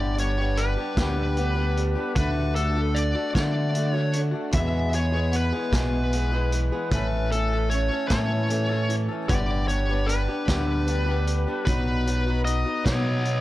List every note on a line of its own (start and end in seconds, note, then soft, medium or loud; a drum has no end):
0.00 0.75 G1 medium
0.00 0.18 G2 medium
0.00 0.18 D3 medium
0.00 0.15 G3 medium
0.00 0.17 B3 medium
0.00 0.18 D4 medium
0.00 0.19 G4 medium
0.00 0.16 D5 medium
0.16 0.37 G3 medium
0.16 0.38 B3 medium
0.16 0.38 D4 medium
0.16 0.36 G4 medium
0.16 0.60 C#5 medium
0.16 closed hi-hat medium
0.37 0.78 B3 soft
0.37 0.77 D4 soft
0.37 0.75 G4 medium
0.41 0.79 G3 soft
0.57 2.16 D4 medium
0.57 2.12 B4 medium
0.57 closed hi-hat medium
0.77 0.98 G3 soft
0.77 0.98 B3 soft
0.77 0.98 D4 soft
0.77 0.97 G4 soft
0.97 1.95 D2 loud
0.97 1.37 G2 medium
0.97 1.38 D3 medium
0.97 1.35 G3 medium
0.97 1.37 B3 medium
0.97 1.38 D4 medium
0.97 1.38 G4 medium
0.97 kick medium
0.97 snare loud
0.97 closed hi-hat medium
1.36 1.56 G3 medium
1.36 1.56 B3 medium
1.36 1.55 D4 medium
1.36 1.53 G4 medium
1.36 closed hi-hat medium
1.54 1.97 G3 soft
1.54 1.96 B3 soft
1.54 1.95 D4 soft
1.54 1.94 G4 medium
1.77 2.16 G3 medium
1.77 closed hi-hat medium
1.95 2.15 G3 soft
1.95 2.16 B3 soft
1.95 2.15 D4 soft
1.95 2.16 G4 soft
2.15 3.14 D2 medium
2.15 2.53 D3 medium
2.15 2.55 A3 medium
2.15 2.56 D4 medium
2.15 2.56 F#4 medium
2.15 2.55 B4 medium
2.15 kick loud
2.15 closed hi-hat medium
2.54 2.75 D3 medium
2.54 2.76 A3 medium
2.54 2.76 D4 medium
2.54 2.74 F#4 medium
2.54 2.96 A4 medium
2.54 closed hi-hat medium
2.75 3.17 A3 soft
2.75 3.16 D4 soft
2.75 3.14 F#4 medium
2.94 4.54 D4 medium
2.94 3.32 D5 medium
2.94 closed hi-hat medium
3.15 3.34 D4 soft
3.15 3.34 F#4 soft
3.19 3.33 A3 soft
3.33 3.70 D3 medium
3.33 4.33 D3 loud
3.33 3.71 A3 medium
3.33 3.73 D4 medium
3.33 3.74 F#4 medium
3.33 3.93 D5 medium
3.33 kick medium
3.33 snare loud
3.33 closed hi-hat medium
3.71 3.93 D3 medium
3.71 3.94 A3 medium
3.71 3.93 D4 medium
3.71 3.91 F#4 medium
3.71 closed hi-hat medium
3.92 4.34 A3 soft
3.92 4.32 D4 soft
3.92 4.30 F#4 soft
3.92 4.20 C#5 medium
4.13 4.54 D3 medium
4.13 closed hi-hat medium
4.31 4.53 A3 soft
4.31 4.53 D4 soft
4.31 4.52 F#4 soft
4.51 4.92 E2 medium
4.51 5.51 E2 medium
4.51 4.93 B2 medium
4.51 4.90 E3 medium
4.51 4.92 G#3 medium
4.51 4.93 B3 medium
4.51 4.94 G#4 medium
4.51 4.95 E5 medium
4.51 kick loud
4.51 closed hi-hat medium
4.92 5.12 E3 soft
4.92 5.13 G#3 medium
4.92 5.13 B3 medium
4.92 5.11 G#4 medium
4.92 5.35 C#5 medium
4.92 closed hi-hat medium
5.12 5.54 E3 soft
5.12 5.54 G#3 soft
5.12 5.53 B3 soft
5.12 5.51 G#4 medium
5.31 6.91 B3 medium
5.31 closed hi-hat medium
5.36 6.89 B4 medium
5.52 5.72 G#3 soft
5.52 5.74 B3 medium
5.52 5.72 G#4 medium
5.57 5.73 E3 soft
5.72 6.70 B1 medium
5.72 6.12 E2 medium
5.72 6.13 B2 medium
5.72 6.11 E3 medium
5.72 6.12 G#3 medium
5.72 6.13 B3 medium
5.72 6.13 G#4 medium
5.72 kick medium
5.72 snare loud
5.72 closed hi-hat medium
6.12 6.32 E3 medium
6.12 6.33 G#3 medium
6.12 6.32 B3 medium
6.12 6.31 G#4 medium
6.12 closed hi-hat medium
6.32 6.73 E3 soft
6.32 6.73 G#3 soft
6.32 6.71 B3 soft
6.32 6.71 G#4 medium
6.52 6.92 E3 medium
6.52 closed hi-hat medium
6.72 6.92 E3 soft
6.72 6.93 G#3 soft
6.72 6.92 B3 soft
6.72 6.92 G#4 medium
6.91 7.89 A1 medium
6.91 7.31 A2 medium
6.91 7.30 E3 medium
6.91 7.31 A3 medium
6.91 7.32 C#4 medium
6.91 7.32 A4 medium
6.91 7.31 B4 medium
6.91 kick loud
6.91 closed hi-hat medium
7.31 7.51 E3 medium
7.31 7.51 A3 medium
7.31 7.52 C#4 medium
7.31 7.68 A4 medium
7.31 7.52 A4 medium
7.31 closed hi-hat medium
7.53 7.93 A3 soft
7.53 7.91 C#4 soft
7.53 7.89 A4 medium
7.70 9.29 C#4 medium
7.70 8.07 C#5 medium
7.70 closed hi-hat medium
7.91 8.11 A3 soft
7.91 8.11 C#4 soft
7.91 8.10 A4 medium
8.08 9.08 A2 loud
8.08 8.50 A2 medium
8.08 8.49 E3 medium
8.08 8.94 C#5 medium
8.08 kick medium
8.08 snare loud
8.08 closed hi-hat medium
8.12 8.50 A3 medium
8.12 8.51 C#4 medium
8.12 8.51 A4 medium
8.50 8.70 E3 medium
8.50 8.70 A3 medium
8.50 8.70 C#4 medium
8.50 8.67 A4 medium
8.50 closed hi-hat medium
8.69 9.11 A3 soft
8.69 9.10 C#4 soft
8.69 9.07 A4 soft
8.89 9.29 E3 medium
8.89 closed hi-hat soft
9.08 9.30 C#4 soft
9.08 9.29 A4 medium
9.13 9.29 A3 soft
9.29 10.26 G1 medium
9.29 9.68 G2 medium
9.29 9.68 D3 medium
9.29 9.67 G3 medium
9.29 9.68 B3 medium
9.29 9.69 D4 medium
9.29 9.69 G4 medium
9.29 9.68 D5 medium
9.29 kick loud
9.29 closed hi-hat medium
9.68 9.88 G3 medium
9.68 9.89 B3 medium
9.68 9.89 D4 medium
9.68 9.88 G4 medium
9.68 10.09 C#5 medium
9.68 closed hi-hat medium
9.89 10.30 G3 soft
9.89 10.29 B3 soft
9.89 10.28 D4 soft
9.89 10.27 G4 soft
10.07 11.66 D4 medium
10.07 11.64 B4 medium
10.07 closed hi-hat medium
10.28 10.48 G3 soft
10.28 10.49 B3 soft
10.28 10.48 D4 soft
10.28 10.48 G4 medium
10.48 11.45 D2 loud
10.48 10.87 G2 medium
10.48 10.87 D3 medium
10.48 10.85 G3 medium
10.48 10.86 B3 medium
10.48 10.87 D4 medium
10.48 10.88 G4 medium
10.48 kick medium
10.48 snare loud
10.48 closed hi-hat medium
10.87 11.07 G3 medium
10.87 11.07 B3 medium
10.87 11.06 D4 medium
10.87 11.05 G4 medium
10.87 closed hi-hat medium
11.06 11.47 G3 soft
11.06 11.47 B3 medium
11.06 11.47 D4 soft
11.06 11.46 G4 medium
11.26 11.66 G3 medium
11.26 closed hi-hat medium
11.47 11.67 G3 soft
11.47 11.66 B3 soft
11.47 11.67 D4 soft
11.47 11.66 G4 medium
11.65 12.64 B1 medium
11.65 12.05 B2 medium
11.65 12.05 F#3 medium
11.65 12.06 B3 medium
11.65 12.07 D#4 medium
11.65 12.07 F#4 medium
11.65 12.41 B4 medium
11.65 kick loud
11.65 closed hi-hat medium
12.06 12.26 F#3 medium
12.06 12.26 B3 medium
12.06 12.27 D#4 medium
12.06 12.25 F#4 medium
12.06 closed hi-hat medium
12.27 12.67 B3 soft
12.27 12.65 D#4 soft
12.27 12.64 F#4 medium
12.45 13.41 D#4 medium
12.45 12.85 D#5 medium
12.45 closed hi-hat medium
12.65 12.85 B3 soft
12.65 12.85 D#4 soft
12.65 12.85 F#4 soft
12.85 13.41 B2 loud
12.85 13.25 B2 medium
12.85 13.23 F#3 medium
12.85 13.24 B3 medium
12.85 13.25 D#4 medium
12.85 13.26 F#4 medium
12.85 13.41 C#5 medium
12.85 13.41 D#5 medium
12.85 kick medium
12.85 snare loud
12.85 closed hi-hat medium
13.24 13.41 F#3 medium
13.24 13.41 B3 medium
13.24 13.41 D#4 medium
13.24 13.41 F#4 medium
13.24 closed hi-hat medium